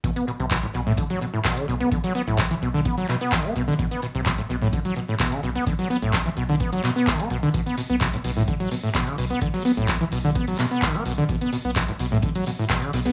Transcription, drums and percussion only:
0.04 kick, closed hi-hat
0.16 closed hi-hat
0.28 closed hi-hat
0.40 closed hi-hat
0.51 kick, snare, clap, closed hi-hat
0.63 closed hi-hat
0.74 snare, closed hi-hat
0.87 snare
0.97 kick, closed hi-hat
1.10 closed hi-hat
1.22 closed hi-hat
1.45 kick, snare, clap, closed hi-hat
1.57 closed hi-hat
1.69 closed hi-hat
1.80 closed hi-hat
1.92 kick, closed hi-hat
2.04 snare, closed hi-hat
2.15 closed hi-hat
2.27 closed hi-hat
2.38 kick, snare, clap, closed hi-hat
2.51 closed hi-hat
2.62 closed hi-hat
2.74 snare
2.85 kick, closed hi-hat
2.97 closed hi-hat
3.09 clap, closed hi-hat
3.21 closed hi-hat
3.32 kick, snare, clap, closed hi-hat
3.44 closed hi-hat
3.56 closed hi-hat
3.68 closed hi-hat
3.79 kick, closed hi-hat
3.91 closed hi-hat
4.02 closed hi-hat
4.15 closed hi-hat
4.25 kick, snare, clap, closed hi-hat
4.38 closed hi-hat
4.49 snare, closed hi-hat
4.62 snare
4.73 kick, closed hi-hat
4.85 closed hi-hat
4.96 closed hi-hat
5.20 kick, snare, clap, closed hi-hat
5.32 closed hi-hat
5.43 closed hi-hat
5.55 closed hi-hat
5.67 kick, closed hi-hat
5.79 snare, closed hi-hat
5.91 closed hi-hat
6.02 closed hi-hat
6.13 kick, snare, clap, closed hi-hat
6.26 closed hi-hat
6.37 closed hi-hat
6.50 snare
6.60 kick, closed hi-hat
6.73 closed hi-hat
6.84 clap, closed hi-hat
6.96 closed hi-hat
7.07 kick, snare, clap, closed hi-hat
7.20 closed hi-hat
7.30 closed hi-hat
7.43 closed hi-hat
7.54 kick, closed hi-hat
7.66 closed hi-hat
7.78 closed hi-hat, open hi-hat
7.90 closed hi-hat
8.00 kick, snare, clap, closed hi-hat
8.13 closed hi-hat
8.24 snare, closed hi-hat, open hi-hat
8.37 snare
8.48 kick, closed hi-hat
8.60 closed hi-hat
8.71 closed hi-hat, open hi-hat
8.95 kick, snare, clap, closed hi-hat
9.07 closed hi-hat
9.18 closed hi-hat, open hi-hat
9.30 closed hi-hat
9.41 kick, closed hi-hat
9.54 snare, closed hi-hat
9.65 closed hi-hat, open hi-hat
9.77 closed hi-hat
9.88 kick, snare, clap, closed hi-hat
10.01 closed hi-hat
10.12 closed hi-hat, open hi-hat
10.24 snare
10.35 kick, closed hi-hat
10.48 closed hi-hat
10.59 clap, closed hi-hat, open hi-hat
10.71 closed hi-hat
10.82 kick, snare, clap, closed hi-hat
10.94 closed hi-hat
11.06 closed hi-hat, open hi-hat
11.18 closed hi-hat
11.29 kick, closed hi-hat
11.41 closed hi-hat
11.53 closed hi-hat, open hi-hat
11.65 closed hi-hat
11.76 kick, snare, clap, closed hi-hat
11.88 closed hi-hat
11.99 snare, closed hi-hat, open hi-hat
12.11 snare
12.22 kick, closed hi-hat
12.35 closed hi-hat
12.46 closed hi-hat, open hi-hat
12.69 kick, snare, clap, closed hi-hat
12.82 closed hi-hat
12.93 snare, closed hi-hat, open hi-hat
13.05 snare, closed hi-hat

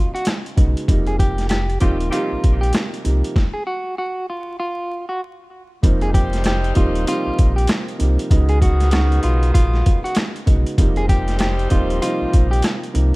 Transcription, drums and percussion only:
0.16 closed hi-hat
0.25 cross-stick, snare, closed hi-hat
0.46 closed hi-hat
0.57 kick, closed hi-hat
0.77 closed hi-hat
0.88 kick, closed hi-hat
1.06 closed hi-hat
1.19 kick, closed hi-hat
1.38 snare, closed hi-hat
1.49 cross-stick, snare, closed hi-hat
1.70 closed hi-hat
1.80 kick, closed hi-hat
2.00 closed hi-hat
2.13 closed hi-hat
2.44 kick, closed hi-hat
2.63 closed hi-hat
2.73 cross-stick, snare, closed hi-hat
2.94 closed hi-hat
3.05 closed hi-hat
3.24 closed hi-hat
3.36 kick, snare
5.83 kick, closed hi-hat
6.01 closed hi-hat
6.14 kick, closed hi-hat
6.33 snare, closed hi-hat
6.44 cross-stick, snare, closed hi-hat
6.64 closed hi-hat
6.75 kick, closed hi-hat
6.95 closed hi-hat
7.07 closed hi-hat
7.39 kick, closed hi-hat
7.58 closed hi-hat
7.67 cross-stick, snare, closed hi-hat
7.88 closed hi-hat
8.00 closed hi-hat
8.19 closed hi-hat
8.31 kick, closed hi-hat
8.49 closed hi-hat
8.62 kick, closed hi-hat
8.80 snare, closed hi-hat
8.91 cross-stick, snare, closed hi-hat
9.12 closed hi-hat
9.23 closed hi-hat
9.43 closed hi-hat
9.55 kick, closed hi-hat
9.74 snare
9.86 kick, closed hi-hat
10.05 closed hi-hat
10.15 cross-stick, snare, closed hi-hat
10.36 closed hi-hat
10.47 kick, closed hi-hat
10.67 closed hi-hat
10.78 kick, closed hi-hat
10.96 closed hi-hat
11.09 kick, closed hi-hat
11.28 snare, closed hi-hat
11.39 cross-stick, snare, closed hi-hat
11.59 closed hi-hat
11.70 kick, closed hi-hat
11.90 closed hi-hat
12.02 closed hi-hat
12.33 kick, closed hi-hat
12.53 closed hi-hat
12.62 cross-stick, snare, closed hi-hat
12.84 closed hi-hat
12.95 closed hi-hat

